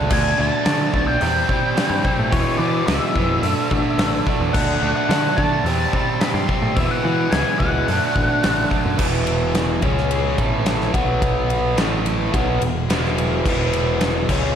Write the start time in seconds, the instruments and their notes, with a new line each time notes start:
0.10 picked electric bass D2, overdriven electric guitar D3 A3 D4, lead electric guitar G#5, kick, crash
0.38 picked electric bass D2, overdriven electric guitar D3 A3 D4, lead electric guitar A5
0.65 overdriven electric guitar D3 A3 D4, picked electric bass D3, snare, open hi-hat
0.93 picked electric bass B1, overdriven electric guitar D3 A3 D4, kick
1.07 lead electric guitar G5
1.21 picked electric bass E2, overdriven electric guitar C3 G3 C4, open hi-hat
1.49 overdriven electric guitar C3 G3 C4, kick
1.75 overdriven electric guitar C3 G3 C4, snare, open hi-hat
1.90 picked electric bass G2
2.04 overdriven electric guitar C3 G3 C4, kick
2.19 picked electric bass A2
2.30 overdriven electric guitar E2 B2 E3, picked electric bass E2, lead electric guitar C#5, kick, open hi-hat
2.58 overdriven electric guitar E2 B2 E3, picked electric bass E3, lead electric guitar D5
2.87 picked electric bass C#2, overdriven electric guitar E2 B2 E3, lead electric guitar E5, snare, open hi-hat
3.16 overdriven electric guitar E2 B2 E3, picked electric bass F2, kick
3.42 picked electric bass F#2, overdriven electric guitar D3 A3 D4, open hi-hat
3.70 picked electric bass A1, overdriven electric guitar D3 A3 D4, kick
3.98 picked electric bass A1, overdriven electric guitar D3 A3 D4, snare, open hi-hat
4.26 overdriven electric guitar D3 A3 D4, kick
4.40 picked electric bass E2
4.53 picked electric bass D2, overdriven electric guitar D3 A3 D4, lead electric guitar F#5, kick, crash
4.82 picked electric bass D2, overdriven electric guitar D3 A3 D4
4.96 lead electric guitar F#5
5.09 picked electric bass D3, overdriven electric guitar D3 A3 D4, snare, open hi-hat
5.37 overdriven electric guitar D3 A3 D4, picked electric bass D3, lead electric guitar A5, kick
5.64 picked electric bass E2, overdriven electric guitar C3 G3 C4, open hi-hat
5.93 overdriven electric guitar C3 G3 C4, kick
6.21 overdriven electric guitar C3 G3 C4, lead electric guitar B5, snare, open hi-hat
6.34 picked electric bass G2, lead electric guitar C6
6.48 overdriven electric guitar C3 G3 C4, kick
6.62 picked electric bass A2
6.76 overdriven electric guitar E2 B2 E3, picked electric bass E2, lead electric guitar E5, kick, open hi-hat
6.91 lead electric guitar F#5
7.03 overdriven electric guitar E2 B2 E3, picked electric bass E3
7.31 picked electric bass C#2, overdriven electric guitar E2 B2 E3, lead electric guitar G#5, snare, open hi-hat
7.59 picked electric bass C#2, overdriven electric guitar E2 B2 E3, lead electric guitar F#5, kick
7.88 picked electric bass F#2, overdriven electric guitar D3 A3 D4, open hi-hat
8.15 picked electric bass A1, overdriven electric guitar D3 A3 D4, kick
8.43 picked electric bass A1, overdriven electric guitar D3 A3 D4, snare, open hi-hat
8.71 overdriven electric guitar D3 A3 D4, kick
8.85 picked electric bass F#2
8.97 picked electric bass E1, overdriven electric guitar E2 B2 E3, kick, crash
9.27 ride
9.55 snare, ride
9.82 picked electric bass C#2, overdriven electric guitar C#3 G#3 C#4, kick, ride
9.98 snare
10.11 ride
10.38 picked electric bass A1, overdriven electric guitar A2 E3 A3, kick, ride
10.66 snare, ride
10.81 snare
10.93 picked electric bass B1, overdriven electric guitar B2 F#3 B3, kick, ride
11.22 kick, ride
11.50 ride
11.77 picked electric bass A1, overdriven electric guitar A2 E3 A3, snare, ride
12.06 ride
12.33 picked electric bass B1, overdriven electric guitar B2 F#3 B3, kick, ride
12.61 picked electric bass E1, overdriven electric guitar E2 B2, ride
12.88 picked electric bass E1, overdriven electric guitar E2 B2 E3, snare, ride
13.05 snare
13.18 ride
13.45 picked electric bass E1, overdriven electric guitar E2 B2 E3, kick, crash
13.73 ride
14.01 snare, ride
14.29 picked electric bass C#2, overdriven electric guitar C#3 G#3 C#4, kick, crash